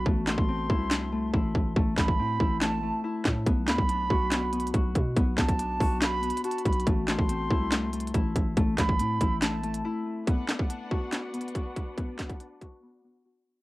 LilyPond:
<<
  \new Staff \with { instrumentName = "Flute" } { \time 4/4 \key b \phrygian \tempo 4 = 141 r8 c'''2~ c'''8 r4 | r8 b''4. a''4 r4 | r8 b''2~ b''8 r4 | r8 a''4. b''4 a''8 b''8 |
r8 c'''2~ c'''8 r4 | r8 b''4. a''4 r4 | r1 | r1 | }
  \new Staff \with { instrumentName = "String section" } { \time 4/4 \key b \phrygian r1 | r1 | r1 | r1 |
r1 | r1 | <d' b' fis''>1~ | <d' b' fis''>1 | }
  \new Staff \with { instrumentName = "Harp" } { \time 4/4 \key b \phrygian a8 a8 c'8 e'8 a8 a8 e'4 | a8 a8 c'8 e'8 a8 a8 e'4 | b8 b8 d'8 fis'8 b8 b8 fis'4 | b8 b8 d'8 fis'8 b8 b8 fis'4 |
a8 a8 c'8 e'8 a8 a8 e'4 | a8 a8 c'8 e'8 a8 a8 e'4 | b8 b8 d'8 fis'8 b8 b8 fis'4 | b8 b8 d'8 fis'8 b8 b8 fis'4 | }
  \new Staff \with { instrumentName = "808-style bass" } { \clef bass \time 4/4 \key b \phrygian a,,8. a,,8. c,4. a,,8 a,,8 | a,,8 a,,8 a,8 a,,4~ a,,16 r8. a,8 | b,,8 d,16 b,,8. b,,4. b,,8 b,8 | b,,8 b,,4 b,,4~ b,,16 r8. b,,8 |
a,,8. a,,8. c,4. a,,8 a,,8 | a,,8 a,,8 a,8 a,,4. r4 | r1 | r1 | }
  \new DrumStaff \with { instrumentName = "Drums" } \drummode { \time 4/4 bd8 <hc sn>16 bd16 r8 bd8 <hc sn>4 bd8 bd8 | bd8 <hc bd sn>16 bd16 r8 bd8 <hc sn>4 r8 <hc bd sn>8 | <hh bd>8 <hc sn>16 bd16 hh8 bd8 \tuplet 3/2 { <hc hh sn>16 r16 r16 hh16 hh16 hh16 } <hh bd>8 <hh bd>8 | <hh bd>8 <hc hh bd sn>16 <hh bd>16 hh8 <hho bd>8 \tuplet 3/2 { <hc hh sn>16 r16 r16 hh16 hh16 hh16 hh16 hh16 hh16 <hh bd>16 hh16 hh16 } |
<hh bd>8 <hc sn>16 bd16 hh8 bd8 \tuplet 3/2 { <hc hh sn>16 r16 r16 hh16 hh16 hh16 } <hh bd>8 <hh bd>8 | <hh bd>8 <hc hh bd sn>16 bd16 hh8 <hh bd>8 <hc hh sn>8 hh16 hh16 r4 | <hh bd>8 <hc sn>16 bd16 hh8 bd8 \tuplet 3/2 { <hc hh sn>16 r16 r16 hh16 hh16 hh16 } <hh bd>8 <hh bd>8 | <hh bd>8 <hc hh bd sn>16 <hh bd>16 hh8 <hh bd>8 r4 r4 | }
>>